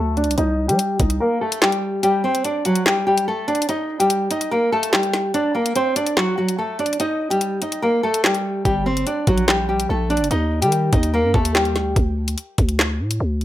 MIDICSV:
0, 0, Header, 1, 4, 480
1, 0, Start_track
1, 0, Key_signature, -2, "minor"
1, 0, Tempo, 413793
1, 437, Time_signature, 4, 2, 24, 8
1, 15601, End_track
2, 0, Start_track
2, 0, Title_t, "Nylon-string guitar"
2, 0, Program_c, 0, 24
2, 0, Note_on_c, 0, 57, 58
2, 0, Note_on_c, 0, 69, 76
2, 170, Note_off_c, 0, 69, 0
2, 175, Note_off_c, 0, 57, 0
2, 199, Note_on_c, 0, 62, 82
2, 208, Note_on_c, 0, 74, 63
2, 411, Note_off_c, 0, 62, 0
2, 416, Note_off_c, 0, 74, 0
2, 438, Note_on_c, 0, 63, 108
2, 447, Note_on_c, 0, 75, 83
2, 776, Note_off_c, 0, 63, 0
2, 781, Note_off_c, 0, 75, 0
2, 792, Note_on_c, 0, 67, 83
2, 801, Note_on_c, 0, 55, 63
2, 1133, Note_off_c, 0, 67, 0
2, 1138, Note_off_c, 0, 55, 0
2, 1160, Note_on_c, 0, 63, 70
2, 1169, Note_on_c, 0, 75, 57
2, 1371, Note_off_c, 0, 63, 0
2, 1376, Note_off_c, 0, 75, 0
2, 1396, Note_on_c, 0, 70, 82
2, 1405, Note_on_c, 0, 58, 68
2, 1609, Note_off_c, 0, 70, 0
2, 1614, Note_off_c, 0, 58, 0
2, 1638, Note_on_c, 0, 69, 81
2, 1648, Note_on_c, 0, 57, 65
2, 1850, Note_off_c, 0, 69, 0
2, 1856, Note_off_c, 0, 57, 0
2, 1882, Note_on_c, 0, 67, 78
2, 1891, Note_on_c, 0, 55, 59
2, 2331, Note_off_c, 0, 67, 0
2, 2336, Note_off_c, 0, 55, 0
2, 2355, Note_on_c, 0, 67, 101
2, 2364, Note_on_c, 0, 55, 77
2, 2569, Note_off_c, 0, 67, 0
2, 2574, Note_off_c, 0, 55, 0
2, 2597, Note_on_c, 0, 60, 89
2, 2606, Note_on_c, 0, 72, 67
2, 2810, Note_off_c, 0, 60, 0
2, 2815, Note_off_c, 0, 72, 0
2, 2835, Note_on_c, 0, 62, 79
2, 2845, Note_on_c, 0, 74, 65
2, 3049, Note_off_c, 0, 62, 0
2, 3054, Note_off_c, 0, 74, 0
2, 3078, Note_on_c, 0, 66, 80
2, 3087, Note_on_c, 0, 54, 66
2, 3290, Note_off_c, 0, 66, 0
2, 3295, Note_off_c, 0, 54, 0
2, 3316, Note_on_c, 0, 67, 86
2, 3325, Note_on_c, 0, 55, 62
2, 3529, Note_off_c, 0, 67, 0
2, 3534, Note_off_c, 0, 55, 0
2, 3557, Note_on_c, 0, 67, 84
2, 3566, Note_on_c, 0, 55, 62
2, 3770, Note_off_c, 0, 67, 0
2, 3775, Note_off_c, 0, 55, 0
2, 3803, Note_on_c, 0, 69, 81
2, 3812, Note_on_c, 0, 57, 62
2, 4013, Note_off_c, 0, 69, 0
2, 4018, Note_off_c, 0, 57, 0
2, 4034, Note_on_c, 0, 62, 84
2, 4043, Note_on_c, 0, 74, 64
2, 4248, Note_off_c, 0, 62, 0
2, 4253, Note_off_c, 0, 74, 0
2, 4279, Note_on_c, 0, 63, 103
2, 4288, Note_on_c, 0, 75, 79
2, 4617, Note_off_c, 0, 63, 0
2, 4621, Note_off_c, 0, 75, 0
2, 4635, Note_on_c, 0, 67, 84
2, 4645, Note_on_c, 0, 55, 63
2, 4975, Note_off_c, 0, 67, 0
2, 4979, Note_off_c, 0, 55, 0
2, 4998, Note_on_c, 0, 63, 80
2, 5007, Note_on_c, 0, 75, 64
2, 5210, Note_off_c, 0, 63, 0
2, 5215, Note_off_c, 0, 75, 0
2, 5236, Note_on_c, 0, 70, 93
2, 5245, Note_on_c, 0, 58, 67
2, 5449, Note_off_c, 0, 70, 0
2, 5454, Note_off_c, 0, 58, 0
2, 5479, Note_on_c, 0, 69, 84
2, 5489, Note_on_c, 0, 57, 62
2, 5691, Note_off_c, 0, 69, 0
2, 5696, Note_off_c, 0, 57, 0
2, 5715, Note_on_c, 0, 67, 78
2, 5725, Note_on_c, 0, 55, 60
2, 6167, Note_off_c, 0, 67, 0
2, 6172, Note_off_c, 0, 55, 0
2, 6196, Note_on_c, 0, 62, 88
2, 6205, Note_on_c, 0, 74, 71
2, 6409, Note_off_c, 0, 62, 0
2, 6414, Note_off_c, 0, 74, 0
2, 6433, Note_on_c, 0, 58, 72
2, 6442, Note_on_c, 0, 70, 60
2, 6648, Note_off_c, 0, 58, 0
2, 6653, Note_off_c, 0, 70, 0
2, 6677, Note_on_c, 0, 60, 84
2, 6686, Note_on_c, 0, 72, 73
2, 6889, Note_off_c, 0, 60, 0
2, 6894, Note_off_c, 0, 72, 0
2, 6913, Note_on_c, 0, 62, 92
2, 6922, Note_on_c, 0, 74, 64
2, 7127, Note_off_c, 0, 62, 0
2, 7132, Note_off_c, 0, 74, 0
2, 7156, Note_on_c, 0, 66, 95
2, 7166, Note_on_c, 0, 54, 61
2, 7369, Note_off_c, 0, 66, 0
2, 7375, Note_off_c, 0, 54, 0
2, 7396, Note_on_c, 0, 66, 78
2, 7406, Note_on_c, 0, 54, 60
2, 7609, Note_off_c, 0, 66, 0
2, 7614, Note_off_c, 0, 54, 0
2, 7638, Note_on_c, 0, 69, 78
2, 7647, Note_on_c, 0, 57, 59
2, 7850, Note_off_c, 0, 69, 0
2, 7855, Note_off_c, 0, 57, 0
2, 7878, Note_on_c, 0, 62, 80
2, 7888, Note_on_c, 0, 74, 62
2, 8090, Note_off_c, 0, 62, 0
2, 8096, Note_off_c, 0, 74, 0
2, 8118, Note_on_c, 0, 63, 112
2, 8127, Note_on_c, 0, 75, 83
2, 8456, Note_off_c, 0, 63, 0
2, 8461, Note_off_c, 0, 75, 0
2, 8471, Note_on_c, 0, 67, 85
2, 8481, Note_on_c, 0, 55, 65
2, 8812, Note_off_c, 0, 67, 0
2, 8817, Note_off_c, 0, 55, 0
2, 8839, Note_on_c, 0, 63, 73
2, 8848, Note_on_c, 0, 75, 56
2, 9051, Note_off_c, 0, 63, 0
2, 9056, Note_off_c, 0, 75, 0
2, 9076, Note_on_c, 0, 70, 82
2, 9085, Note_on_c, 0, 58, 67
2, 9289, Note_off_c, 0, 70, 0
2, 9294, Note_off_c, 0, 58, 0
2, 9319, Note_on_c, 0, 69, 82
2, 9328, Note_on_c, 0, 57, 64
2, 9531, Note_off_c, 0, 69, 0
2, 9536, Note_off_c, 0, 57, 0
2, 9562, Note_on_c, 0, 67, 79
2, 9572, Note_on_c, 0, 55, 56
2, 10011, Note_off_c, 0, 67, 0
2, 10016, Note_off_c, 0, 55, 0
2, 10035, Note_on_c, 0, 67, 99
2, 10045, Note_on_c, 0, 55, 78
2, 10249, Note_off_c, 0, 67, 0
2, 10254, Note_off_c, 0, 55, 0
2, 10277, Note_on_c, 0, 60, 88
2, 10287, Note_on_c, 0, 72, 66
2, 10490, Note_off_c, 0, 60, 0
2, 10495, Note_off_c, 0, 72, 0
2, 10516, Note_on_c, 0, 62, 84
2, 10525, Note_on_c, 0, 74, 68
2, 10729, Note_off_c, 0, 62, 0
2, 10734, Note_off_c, 0, 74, 0
2, 10759, Note_on_c, 0, 66, 83
2, 10768, Note_on_c, 0, 54, 68
2, 10971, Note_off_c, 0, 66, 0
2, 10976, Note_off_c, 0, 54, 0
2, 10996, Note_on_c, 0, 67, 88
2, 11006, Note_on_c, 0, 55, 62
2, 11209, Note_off_c, 0, 67, 0
2, 11214, Note_off_c, 0, 55, 0
2, 11237, Note_on_c, 0, 67, 82
2, 11247, Note_on_c, 0, 55, 63
2, 11450, Note_off_c, 0, 67, 0
2, 11455, Note_off_c, 0, 55, 0
2, 11482, Note_on_c, 0, 69, 79
2, 11492, Note_on_c, 0, 57, 64
2, 11692, Note_off_c, 0, 69, 0
2, 11698, Note_off_c, 0, 57, 0
2, 11715, Note_on_c, 0, 62, 86
2, 11724, Note_on_c, 0, 74, 64
2, 11928, Note_off_c, 0, 62, 0
2, 11934, Note_off_c, 0, 74, 0
2, 11958, Note_on_c, 0, 63, 104
2, 11968, Note_on_c, 0, 75, 82
2, 12296, Note_off_c, 0, 63, 0
2, 12301, Note_off_c, 0, 75, 0
2, 12316, Note_on_c, 0, 67, 82
2, 12325, Note_on_c, 0, 55, 65
2, 12655, Note_off_c, 0, 67, 0
2, 12660, Note_off_c, 0, 55, 0
2, 12677, Note_on_c, 0, 63, 82
2, 12686, Note_on_c, 0, 75, 67
2, 12890, Note_off_c, 0, 63, 0
2, 12895, Note_off_c, 0, 75, 0
2, 12917, Note_on_c, 0, 70, 94
2, 12926, Note_on_c, 0, 58, 68
2, 13129, Note_off_c, 0, 70, 0
2, 13135, Note_off_c, 0, 58, 0
2, 13159, Note_on_c, 0, 69, 81
2, 13169, Note_on_c, 0, 57, 63
2, 13371, Note_off_c, 0, 69, 0
2, 13376, Note_off_c, 0, 57, 0
2, 13395, Note_on_c, 0, 67, 78
2, 13404, Note_on_c, 0, 55, 60
2, 13847, Note_off_c, 0, 67, 0
2, 13852, Note_off_c, 0, 55, 0
2, 15601, End_track
3, 0, Start_track
3, 0, Title_t, "808-style bass"
3, 0, Program_c, 1, 38
3, 0, Note_on_c, 1, 38, 109
3, 317, Note_on_c, 1, 36, 100
3, 335, Note_off_c, 1, 38, 0
3, 431, Note_off_c, 1, 36, 0
3, 437, Note_on_c, 1, 36, 105
3, 797, Note_on_c, 1, 55, 99
3, 814, Note_off_c, 1, 36, 0
3, 911, Note_off_c, 1, 55, 0
3, 1156, Note_on_c, 1, 36, 101
3, 1387, Note_off_c, 1, 36, 0
3, 10037, Note_on_c, 1, 31, 111
3, 10498, Note_off_c, 1, 31, 0
3, 10757, Note_on_c, 1, 34, 108
3, 11448, Note_off_c, 1, 34, 0
3, 11477, Note_on_c, 1, 34, 111
3, 11837, Note_on_c, 1, 30, 101
3, 11854, Note_off_c, 1, 34, 0
3, 11951, Note_off_c, 1, 30, 0
3, 11956, Note_on_c, 1, 39, 105
3, 12316, Note_on_c, 1, 51, 99
3, 12334, Note_off_c, 1, 39, 0
3, 12659, Note_off_c, 1, 51, 0
3, 12676, Note_on_c, 1, 39, 110
3, 13036, Note_on_c, 1, 43, 102
3, 13054, Note_off_c, 1, 39, 0
3, 13151, Note_off_c, 1, 43, 0
3, 13156, Note_on_c, 1, 39, 108
3, 13637, Note_on_c, 1, 38, 98
3, 13654, Note_off_c, 1, 39, 0
3, 13865, Note_off_c, 1, 38, 0
3, 13877, Note_on_c, 1, 38, 109
3, 14338, Note_off_c, 1, 38, 0
3, 14597, Note_on_c, 1, 38, 109
3, 15077, Note_on_c, 1, 45, 100
3, 15095, Note_off_c, 1, 38, 0
3, 15305, Note_off_c, 1, 45, 0
3, 15317, Note_on_c, 1, 38, 109
3, 15601, Note_off_c, 1, 38, 0
3, 15601, End_track
4, 0, Start_track
4, 0, Title_t, "Drums"
4, 197, Note_on_c, 9, 42, 44
4, 277, Note_off_c, 9, 42, 0
4, 277, Note_on_c, 9, 42, 59
4, 357, Note_off_c, 9, 42, 0
4, 357, Note_on_c, 9, 42, 77
4, 437, Note_off_c, 9, 42, 0
4, 437, Note_on_c, 9, 42, 71
4, 553, Note_off_c, 9, 42, 0
4, 802, Note_on_c, 9, 42, 82
4, 916, Note_off_c, 9, 42, 0
4, 916, Note_on_c, 9, 42, 81
4, 1032, Note_off_c, 9, 42, 0
4, 1154, Note_on_c, 9, 42, 84
4, 1156, Note_on_c, 9, 36, 100
4, 1270, Note_off_c, 9, 42, 0
4, 1272, Note_off_c, 9, 36, 0
4, 1275, Note_on_c, 9, 42, 84
4, 1391, Note_off_c, 9, 42, 0
4, 1763, Note_on_c, 9, 42, 82
4, 1877, Note_on_c, 9, 38, 126
4, 1879, Note_off_c, 9, 42, 0
4, 1888, Note_on_c, 9, 39, 104
4, 1993, Note_off_c, 9, 38, 0
4, 2000, Note_on_c, 9, 42, 64
4, 2004, Note_off_c, 9, 39, 0
4, 2116, Note_off_c, 9, 42, 0
4, 2357, Note_on_c, 9, 42, 69
4, 2473, Note_off_c, 9, 42, 0
4, 2722, Note_on_c, 9, 42, 81
4, 2836, Note_off_c, 9, 42, 0
4, 2836, Note_on_c, 9, 42, 85
4, 2952, Note_off_c, 9, 42, 0
4, 3075, Note_on_c, 9, 42, 87
4, 3191, Note_off_c, 9, 42, 0
4, 3196, Note_on_c, 9, 42, 84
4, 3312, Note_off_c, 9, 42, 0
4, 3317, Note_on_c, 9, 38, 117
4, 3328, Note_on_c, 9, 39, 97
4, 3433, Note_off_c, 9, 38, 0
4, 3444, Note_off_c, 9, 39, 0
4, 3683, Note_on_c, 9, 42, 80
4, 3799, Note_off_c, 9, 42, 0
4, 4037, Note_on_c, 9, 42, 44
4, 4117, Note_off_c, 9, 42, 0
4, 4117, Note_on_c, 9, 42, 59
4, 4197, Note_off_c, 9, 42, 0
4, 4197, Note_on_c, 9, 42, 79
4, 4277, Note_off_c, 9, 42, 0
4, 4277, Note_on_c, 9, 42, 71
4, 4393, Note_off_c, 9, 42, 0
4, 4642, Note_on_c, 9, 42, 83
4, 4756, Note_off_c, 9, 42, 0
4, 4756, Note_on_c, 9, 42, 84
4, 4872, Note_off_c, 9, 42, 0
4, 4995, Note_on_c, 9, 42, 85
4, 5111, Note_off_c, 9, 42, 0
4, 5116, Note_on_c, 9, 42, 84
4, 5232, Note_off_c, 9, 42, 0
4, 5603, Note_on_c, 9, 42, 79
4, 5717, Note_on_c, 9, 38, 126
4, 5719, Note_off_c, 9, 42, 0
4, 5728, Note_on_c, 9, 39, 103
4, 5833, Note_off_c, 9, 38, 0
4, 5837, Note_on_c, 9, 42, 54
4, 5844, Note_off_c, 9, 39, 0
4, 5953, Note_off_c, 9, 42, 0
4, 5956, Note_on_c, 9, 42, 54
4, 5957, Note_on_c, 9, 38, 63
4, 6072, Note_off_c, 9, 42, 0
4, 6073, Note_off_c, 9, 38, 0
4, 6197, Note_on_c, 9, 42, 69
4, 6313, Note_off_c, 9, 42, 0
4, 6562, Note_on_c, 9, 42, 81
4, 6676, Note_off_c, 9, 42, 0
4, 6676, Note_on_c, 9, 42, 82
4, 6792, Note_off_c, 9, 42, 0
4, 6914, Note_on_c, 9, 42, 83
4, 7030, Note_off_c, 9, 42, 0
4, 7035, Note_on_c, 9, 42, 85
4, 7151, Note_off_c, 9, 42, 0
4, 7156, Note_on_c, 9, 38, 122
4, 7167, Note_on_c, 9, 39, 92
4, 7272, Note_off_c, 9, 38, 0
4, 7283, Note_off_c, 9, 39, 0
4, 7523, Note_on_c, 9, 42, 77
4, 7639, Note_off_c, 9, 42, 0
4, 7877, Note_on_c, 9, 42, 43
4, 7957, Note_off_c, 9, 42, 0
4, 7957, Note_on_c, 9, 42, 58
4, 8037, Note_off_c, 9, 42, 0
4, 8037, Note_on_c, 9, 42, 78
4, 8117, Note_off_c, 9, 42, 0
4, 8117, Note_on_c, 9, 42, 70
4, 8233, Note_off_c, 9, 42, 0
4, 8482, Note_on_c, 9, 42, 81
4, 8596, Note_off_c, 9, 42, 0
4, 8596, Note_on_c, 9, 42, 84
4, 8712, Note_off_c, 9, 42, 0
4, 8835, Note_on_c, 9, 42, 86
4, 8951, Note_off_c, 9, 42, 0
4, 8956, Note_on_c, 9, 42, 85
4, 9072, Note_off_c, 9, 42, 0
4, 9444, Note_on_c, 9, 42, 80
4, 9557, Note_on_c, 9, 38, 122
4, 9560, Note_off_c, 9, 42, 0
4, 9568, Note_on_c, 9, 39, 107
4, 9673, Note_off_c, 9, 38, 0
4, 9680, Note_on_c, 9, 42, 63
4, 9684, Note_off_c, 9, 39, 0
4, 9796, Note_off_c, 9, 42, 0
4, 10037, Note_on_c, 9, 36, 118
4, 10038, Note_on_c, 9, 42, 70
4, 10153, Note_off_c, 9, 36, 0
4, 10154, Note_off_c, 9, 42, 0
4, 10403, Note_on_c, 9, 42, 82
4, 10517, Note_off_c, 9, 42, 0
4, 10517, Note_on_c, 9, 42, 87
4, 10633, Note_off_c, 9, 42, 0
4, 10755, Note_on_c, 9, 42, 86
4, 10757, Note_on_c, 9, 36, 98
4, 10871, Note_off_c, 9, 42, 0
4, 10873, Note_off_c, 9, 36, 0
4, 10876, Note_on_c, 9, 42, 85
4, 10992, Note_off_c, 9, 42, 0
4, 10997, Note_on_c, 9, 38, 114
4, 11008, Note_on_c, 9, 39, 92
4, 11113, Note_off_c, 9, 38, 0
4, 11124, Note_off_c, 9, 39, 0
4, 11364, Note_on_c, 9, 42, 81
4, 11480, Note_off_c, 9, 42, 0
4, 11717, Note_on_c, 9, 42, 45
4, 11797, Note_off_c, 9, 42, 0
4, 11797, Note_on_c, 9, 42, 61
4, 11877, Note_off_c, 9, 42, 0
4, 11877, Note_on_c, 9, 42, 76
4, 11957, Note_off_c, 9, 42, 0
4, 11957, Note_on_c, 9, 42, 69
4, 12073, Note_off_c, 9, 42, 0
4, 12323, Note_on_c, 9, 42, 82
4, 12436, Note_off_c, 9, 42, 0
4, 12436, Note_on_c, 9, 42, 84
4, 12552, Note_off_c, 9, 42, 0
4, 12674, Note_on_c, 9, 42, 88
4, 12676, Note_on_c, 9, 36, 100
4, 12790, Note_off_c, 9, 42, 0
4, 12792, Note_off_c, 9, 36, 0
4, 12795, Note_on_c, 9, 42, 85
4, 12911, Note_off_c, 9, 42, 0
4, 13156, Note_on_c, 9, 36, 92
4, 13272, Note_off_c, 9, 36, 0
4, 13283, Note_on_c, 9, 42, 82
4, 13397, Note_on_c, 9, 38, 123
4, 13399, Note_off_c, 9, 42, 0
4, 13408, Note_on_c, 9, 39, 108
4, 13513, Note_off_c, 9, 38, 0
4, 13517, Note_on_c, 9, 42, 54
4, 13524, Note_off_c, 9, 39, 0
4, 13633, Note_off_c, 9, 42, 0
4, 13637, Note_on_c, 9, 42, 53
4, 13638, Note_on_c, 9, 38, 61
4, 13753, Note_off_c, 9, 42, 0
4, 13754, Note_off_c, 9, 38, 0
4, 13877, Note_on_c, 9, 36, 121
4, 13877, Note_on_c, 9, 42, 70
4, 13993, Note_off_c, 9, 36, 0
4, 13993, Note_off_c, 9, 42, 0
4, 14242, Note_on_c, 9, 42, 80
4, 14356, Note_off_c, 9, 42, 0
4, 14356, Note_on_c, 9, 42, 85
4, 14472, Note_off_c, 9, 42, 0
4, 14595, Note_on_c, 9, 42, 87
4, 14597, Note_on_c, 9, 36, 104
4, 14711, Note_off_c, 9, 42, 0
4, 14713, Note_off_c, 9, 36, 0
4, 14716, Note_on_c, 9, 42, 86
4, 14832, Note_off_c, 9, 42, 0
4, 14836, Note_on_c, 9, 38, 117
4, 14848, Note_on_c, 9, 39, 99
4, 14952, Note_off_c, 9, 38, 0
4, 14964, Note_off_c, 9, 39, 0
4, 15203, Note_on_c, 9, 42, 77
4, 15319, Note_off_c, 9, 42, 0
4, 15557, Note_on_c, 9, 42, 43
4, 15601, Note_off_c, 9, 42, 0
4, 15601, End_track
0, 0, End_of_file